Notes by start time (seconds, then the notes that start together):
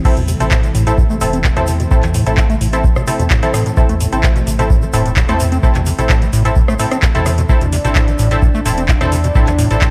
Already playing: C3 E3
0.05 A1 A2 A3 C4 E4 A4, kick, crash, shaker
0.17 E2 B2, closed hi-hat, shaker
0.28 C3, open hi-hat, shaker
0.40 A1 B2 C4 E4 A4, closed hi-hat, shaker
0.51 A2, kick, clap, shaker
0.64 A3, closed hi-hat, shaker
0.75 A1 A2, open hi-hat, shaker
0.87 A2 C4 E4 A4, closed hi-hat, shaker
0.98 A2, kick, shaker
1.10 A3, shaker
1.21 E1 A2 C4 E4 A4, open hi-hat, shaker
1.33 C4, closed hi-hat, shaker
1.44 A2, kick, clap, shaker
1.57 E2 B2 C4 E4 A4, cross-stick, closed hi-hat, shaker
1.67 C3, open hi-hat, shaker
1.80 B2, closed hi-hat, shaker
1.91 A1 A2 C4 E4 A4, kick, shaker
2.03 E2 A3, clap, closed hi-hat, shaker
2.14 A2, open hi-hat, shaker
2.26 A1 A2 C4 E4 A4, closed hi-hat, shaker
2.37 A2, kick, clap, shaker
2.50 A3, closed hi-hat, shaker
2.61 A1 A2, open hi-hat, shaker
2.73 C4 E4 A4, closed hi-hat, shaker
2.84 A2, kick, shaker
2.96 A1 B2, cross-stick, shaker
3.07 C3 C4 E4 A4, open hi-hat, shaker
3.19 E2 B2, closed hi-hat, shaker
3.30 A2, kick, clap, shaker
3.43 A3 C4 E4 A4, closed hi-hat, shaker
3.54 A2, cross-stick, open hi-hat, shaker
3.66 A2, closed hi-hat, shaker
3.77 A1 A2 C4 E4 A4, kick, shaker
3.89 E2 A3, closed hi-hat, shaker
4.00 A2, open hi-hat, shaker
4.12 A1 C4 E4 A4, closed hi-hat, shaker
4.23 A2, kick, clap, shaker
4.36 B2, closed hi-hat, shaker
4.47 A1 C3, open hi-hat, shaker
4.59 B2 C4 E4 A4, closed hi-hat, shaker
4.70 A2, kick, shaker
4.82 A3, shaker
4.93 E1 A2 C4 E4 A4, open hi-hat, shaker
5.06 A2, closed hi-hat, shaker
5.16 A2, kick, clap, shaker
5.29 E2 A3 C4 E4 A4, cross-stick, closed hi-hat, shaker
5.40 A2, open hi-hat, shaker
5.52 C4, closed hi-hat, shaker
5.63 A1 A2 C4 E4 A4, kick, shaker
5.75 E2 B2, clap, closed hi-hat, shaker
5.86 C3, open hi-hat, shaker
5.99 A1 B2 C4 E4 A4, closed hi-hat, shaker
6.09 A2, kick, clap, shaker
6.22 A3, closed hi-hat, shaker
6.33 A1 A2, open hi-hat, shaker
6.45 A2 C4 E4 A4, closed hi-hat, shaker
6.56 A2, kick, shaker
6.68 A1 A3, cross-stick, shaker
6.79 A2 C4 E4 A4, open hi-hat, shaker
6.91 C4, cross-stick, closed hi-hat, shaker
7.02 A2, kick, clap, shaker
7.15 E2 B2 C4 E4 A4, closed hi-hat, shaker
7.26 C3, cross-stick, open hi-hat, shaker
7.38 B2, closed hi-hat, shaker
7.49 A1 A2 C4 D4 E4 A4, kick, shaker
7.61 E2 B2, closed hi-hat, shaker
7.72 C3, open hi-hat, shaker
7.85 A1 B2 C4 E4 A4, closed hi-hat, shaker
7.95 A2, kick, clap, shaker
8.08 A3, closed hi-hat, shaker
8.19 A1 A2, open hi-hat, shaker
8.31 A2 C4 E4 A4, closed hi-hat, shaker
8.42 A2, kick, shaker
8.55 A3, shaker
8.65 E1 A2 C4 E4 A4, open hi-hat, shaker
8.77 C4, closed hi-hat, shaker
8.88 A2, kick, clap, shaker
9.01 E2 B2 C4 E4 A4, cross-stick, closed hi-hat, shaker
9.12 C3, open hi-hat, shaker
9.24 B2, closed hi-hat, shaker
9.35 A1 A2 C4 E4 A4, kick, shaker
9.47 E2 A3, clap, closed hi-hat, shaker
9.59 A2, open hi-hat, shaker
9.71 A1 A2 C4 E4 A4, closed hi-hat, shaker
9.81 A2, kick, clap, shaker